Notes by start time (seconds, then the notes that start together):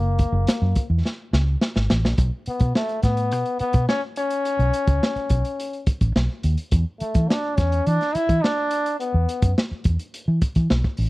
Already playing: F#1 A#3
0.19 kick, closed hi-hat
0.32 F#1
0.47 muted fingered electric bass stroke, snare, closed hi-hat
0.62 F#2
0.75 kick, closed hi-hat
0.90 E2
1.05 snare
1.33 C#2, snare
1.61 snare
1.76 G#1, snare
1.90 A1, snare
2.04 A#1, snare
2.18 B1, kick, closed hi-hat
2.46 B3, muted fingered electric bass stroke, closed hi-hat
2.59 B2, kick, closed hi-hat
2.75 A3, snare
2.89 closed hi-hat
3.03 A2 B3, kick, snare, closed hi-hat
3.17 closed hi-hat
3.32 B2, closed hi-hat
3.46 closed hi-hat
3.59 B3, muted fingered electric bass stroke, closed hi-hat
3.73 B2, kick, closed hi-hat
3.89 C#4, snare
4.16 C#4, closed hi-hat
4.30 closed hi-hat
4.45 closed hi-hat
4.59 B1, closed hi-hat
4.73 closed hi-hat
4.87 C#2, kick, closed hi-hat
5.03 snare
5.16 muted fingered electric bass stroke, closed hi-hat
5.29 B1, kick, closed hi-hat
5.45 closed hi-hat
5.60 closed hi-hat
5.73 closed hi-hat
5.87 muted fingered electric bass stroke, kick, closed hi-hat
6.01 A1, kick, closed hi-hat
6.16 B1, snare
6.43 D#2, closed hi-hat
6.57 closed hi-hat
6.71 E2, kick, closed hi-hat
7.00 A3, muted fingered electric bass stroke, closed hi-hat
7.14 E3, kick, closed hi-hat
7.29 D4, snare
7.57 E2 C#4, kick, snare, closed hi-hat
7.72 closed hi-hat
7.86 E3 D4, closed hi-hat
8.01 snare, closed hi-hat
8.15 E4, muted fingered electric bass stroke, closed hi-hat
8.29 E3, kick, closed hi-hat
8.43 D4, snare
8.71 closed hi-hat
8.86 closed hi-hat
9.00 B3, closed hi-hat
9.14 E2
9.29 closed hi-hat
9.42 F#2, kick, closed hi-hat
9.58 snare
9.71 muted fingered electric bass stroke
9.84 E2, kick, closed hi-hat
9.99 closed hi-hat
10.14 closed hi-hat
10.28 E3
10.41 kick, closed hi-hat
10.55 E3, kick, closed hi-hat
10.70 B1, snare
10.84 kick
10.97 A1, open hi-hat